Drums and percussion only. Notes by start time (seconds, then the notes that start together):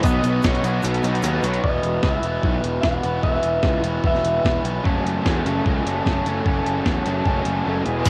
0.03 kick, closed hi-hat, shaker
0.23 closed hi-hat, shaker
0.42 kick, snare, closed hi-hat, shaker
0.55 closed hi-hat
0.63 closed hi-hat, shaker
0.82 closed hi-hat, shaker
0.94 closed hi-hat
1.03 closed hi-hat, shaker
1.15 closed hi-hat
1.22 closed hi-hat, shaker
1.43 closed hi-hat, shaker
1.54 closed hi-hat
1.64 kick
1.83 closed hi-hat
2.03 kick, snare
2.23 closed hi-hat
2.43 kick
2.64 closed hi-hat
2.83 kick, snare
3.03 closed hi-hat
3.23 kick
3.43 closed hi-hat
3.63 kick, snare
3.84 closed hi-hat
4.04 kick
4.15 snare
4.25 closed hi-hat
4.45 kick, snare
4.65 closed hi-hat
4.85 kick
5.07 closed hi-hat
5.26 kick, snare
5.46 closed hi-hat
5.66 kick
5.87 closed hi-hat
6.06 kick, snare
6.26 closed hi-hat
6.46 kick
6.67 closed hi-hat
6.86 kick, snare
7.06 closed hi-hat
7.26 kick
7.45 closed hi-hat
7.86 closed hi-hat
8.05 kick, closed hi-hat, crash, shaker